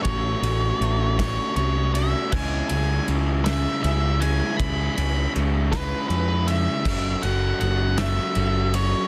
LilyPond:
<<
  \new Staff \with { instrumentName = "Lead electric guitar" } { \time 6/8 \key cis \minor \tempo 4. = 53 cis''4. cis''8 cis''8 e''8 | gis''8 gis''8 r8 e''8 e''8 gis''8 | b''8 b''8 r8 b'8 b'8 e''8~ | e''8 fis''8 fis''8 e''4 cis''8 | }
  \new Staff \with { instrumentName = "Overdriven electric guitar" } { \time 6/8 \key cis \minor <a cis' fis' a'>8 <a cis' fis' a'>8 <a cis' fis' a'>8 <a cis' fis' a'>8 <a cis' fis' a'>8 <a cis' fis' a'>8 | <cis gis cis' e' gis'>8 <cis gis cis' e' gis'>8 <cis gis cis' e' gis'>8 <cis gis cis' e' gis'>8 <cis gis cis' e' gis'>8 <cis gis cis' e' gis'>8 | <cis gis cis' e' gis'>8 <cis gis cis' e' gis'>8 <cis gis cis' e' gis'>8 <cis gis cis' e' gis'>8 <cis gis cis' e' gis'>8 <cis gis cis' e' gis'>8 | <fis cis' fis' a'>8 <fis cis' fis' a'>8 <fis cis' fis' a'>8 <fis cis' fis' a'>8 <fis cis' fis' a'>8 <fis cis' fis' a'>8 | }
  \new Staff \with { instrumentName = "Picked electric bass" } { \clef bass \time 6/8 \key cis \minor a,,8 a,,8 a,,4 bis,,4 | cis,8 cis,8 cis,4 cis,4 | cis,8 cis,8 cis,4 eis,4 | fis,,8 fis,,8 fis,,4 fis,,4 | }
  \new DrumStaff \with { instrumentName = "Drums" } \drummode { \time 6/8 <bd cymr>8 cymr8 cymr8 <bd cymr sn>8 cymr8 cymr8 | <cymc bd>8 cymr8 cymr8 <cymr sn>8 cymr8 cymr8 | <bd cymr>8 cymr8 cymr8 <bd cymr sn>8 cymr8 cymr8 | <cymc bd>8 cymr8 cymr8 <cymr sn>8 cymr8 cymr8 | }
>>